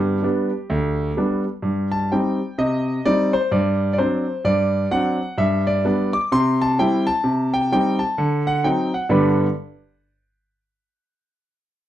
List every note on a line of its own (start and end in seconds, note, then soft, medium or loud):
0.00 0.16 G2 medium
0.00 0.24 B3 soft
0.00 0.22 D4 medium
0.00 1.45 G4 medium
0.23 0.49 G3 soft
0.23 0.49 B3 soft
0.23 0.50 D4 medium
0.70 1.10 D2 medium
1.17 1.43 G3 medium
1.17 1.43 B3 soft
1.17 1.44 D4 medium
1.62 2.03 G2 medium
1.92 2.10 A5 medium
2.12 2.37 G3 soft
2.12 2.38 C4 medium
2.12 2.38 D#4 soft
2.12 2.58 G5 medium
2.58 2.98 C3 medium
2.58 3.05 D#5 medium
3.05 3.31 G3 medium
3.05 3.31 C4 medium
3.05 3.31 D#4 medium
3.05 3.34 D5 medium
3.33 3.51 C5 medium
3.52 3.91 G2 medium
3.52 3.92 D5 medium
3.93 3.98 D5 medium
3.98 4.24 F#3 medium
3.98 4.24 C4 medium
3.98 4.24 D4 medium
3.98 4.45 C5 medium
4.45 4.84 G2 medium
4.45 4.91 D5 medium
4.91 5.17 F#3 medium
4.91 5.17 C4 soft
4.91 5.17 D4 medium
4.91 5.38 F#5 medium
5.38 5.77 G2 medium
5.38 5.67 E5 medium
5.67 6.13 D5 medium
5.85 6.10 G3 soft
5.85 6.10 B3 medium
5.85 6.11 D4 medium
6.13 6.31 D6 medium
6.32 6.71 C3 medium
6.32 6.60 C6 loud
6.62 6.79 A5 loud
6.79 7.04 G3 medium
6.79 7.05 C4 soft
6.79 7.05 E4 medium
6.79 7.07 G5 medium
7.07 7.53 A5 loud
7.24 7.64 C3 medium
7.54 7.71 G5 medium
7.72 7.98 G3 medium
7.72 7.98 C4 medium
7.72 7.98 D#4 medium
7.72 8.00 G5 medium
7.99 8.46 A5 medium
8.18 8.57 D3 medium
8.47 8.65 F#5 medium
8.64 8.90 F#3 soft
8.64 8.91 C4 soft
8.64 8.90 D#4 medium
8.64 8.93 G5 medium
8.94 9.11 F#5 medium
9.09 9.40 G2 medium
9.09 9.40 D3 medium
9.09 9.40 B3 medium
9.09 9.40 D4 medium
9.09 9.40 G4 medium
9.09 9.41 B4 medium
9.09 9.41 B5 medium